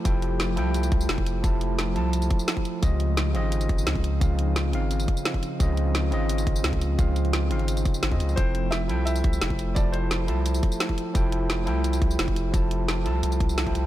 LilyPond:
<<
  \new Staff \with { instrumentName = "Grand piano" } { \time 4/4 \key f \major \tempo 4 = 173 r1 | r1 | r1 | r1 |
r1 | r1 | c''4 e''4 e''2 | d''8 c''2. r8 |
r1 | r1 | }
  \new Staff \with { instrumentName = "Tine electric piano" } { \time 4/4 \key f \major <f e' a' g''>4. <f e' a' g''>2~ <f e' a' g''>8 | <f e' a' a''>4. <f e' a' a''>2~ <f e' a' a''>8 | <des c' f' ees''>4. <des c' f' ees''>2~ <des c' f' ees''>8 | <des c' f' f''>4. <des c' f' f''>2~ <des c' f' f''>8 |
<des c' f' ees''>4. <des c' f' ees''>2~ <des c' f' ees''>8 | <des c' f' f''>4. <des c' f' f''>4.~ <des c' f' f''>16 <des c' f' ees''>8. | <f e' a' g''>4. <f e' a' g''>2~ <f e' a' g''>8 | <f e' a' a''>4. <f e' a' a''>2~ <f e' a' a''>8 |
<f e' a' g''>4. <f e' a' g''>2~ <f e' a' g''>8 | <f e' a' a''>4. <f e' a' a''>4.~ <f e' a' a''>16 <f e' a' g''>8. | }
  \new Staff \with { instrumentName = "Ambient pad" } { \time 4/4 \key f \major <f a g'>1~ | <f a g'>1 | <c' ees'>1~ | <c' ees'>1~ |
<c' ees'>1~ | <c' ees'>1 | <a e' g'>1~ | <a e' g'>1~ |
<a e' g'>1~ | <a e' g'>1 | }
  \new Staff \with { instrumentName = "Sub bass" } { \clef bass \time 4/4 \key f \major f,,4. c,4 c,8 f,,4 | f,,4. c,4 r4. | des,4. aes,,4 aes,,8 des,4 | des,4. aes,,4 r4. |
des,4. aes,,4 aes,,8 des,4 | des,4. aes,,4 r8 aes,,16 f,16 des,8 | f,,4. c,4 c,8 f,,4 | f,,4. c,4 r4. |
f,,4. c,4 c,8 f,,4 | f,,4. c,8 c,4. c,8 | }
  \new DrumStaff \with { instrumentName = "Drums" } \drummode { \time 4/4 <hh bd tamb>8 hh8 <hh sn tamb>8 hh8 <hh tamb>16 <hh tamb>16 <hh bd>16 tamb16 <hh sn tamb>16 <hh bd>16 <hh tamb>8 | <hh bd tamb>8 hh8 <hh sn tamb>8 hh8 <hh tamb>16 <hh tamb>16 <hh bd>16 tamb16 <hh sn tamb>16 <hh bd>16 <hh tamb>8 | <hh bd tamb>8 hh8 <hh sn tamb>8 hh8 <hh tamb>16 <hh tamb>16 <hh bd>16 tamb16 <hh sn tamb>16 <hh bd>16 <hh tamb>8 | <hh bd tamb>8 hh8 <hh sn tamb>8 hh8 <hh tamb>16 <hh tamb>16 <hh bd>16 tamb16 <hh sn tamb>16 <hh bd>16 <hh tamb>8 |
<hh bd tamb>8 hh8 <hh sn tamb>8 hh8 <hh tamb>16 <hh tamb>16 <hh bd>16 tamb16 <hh sn tamb>16 <hh bd>16 <hh tamb>8 | <hh bd tamb>8 <hh tamb>16 hh16 <hh sn tamb>8 hh16 hh16 <hh tamb>16 <hh tamb>16 <hh bd tamb>16 tamb16 <hh sn tamb>16 <hh bd>16 <hh tamb>16 tamb16 | <hh bd tamb>8 hh8 <hh sn tamb>8 hh8 <hh tamb>16 <hh tamb>16 <hh bd>16 tamb16 <hh sn tamb>16 <hh bd>16 <hh tamb>8 | <hh bd tamb>8 hh8 <hh sn tamb>8 hh8 <hh tamb>16 <hh tamb>16 <hh bd>16 tamb16 <hh sn tamb>16 <hh bd>16 <hh tamb>8 |
<hh bd tamb>8 hh8 <hh sn tamb>8 hh8 <hh tamb>16 <hh tamb>16 <hh bd>16 tamb16 <hh sn tamb>16 <hh bd>16 <hh tamb>8 | <hh bd tamb>8 hh8 <hh sn tamb>8 hh8 <hh tamb>16 <hh tamb>16 <hh bd>16 tamb16 <hh sn tamb>16 <hh bd>16 <hh tamb>8 | }
>>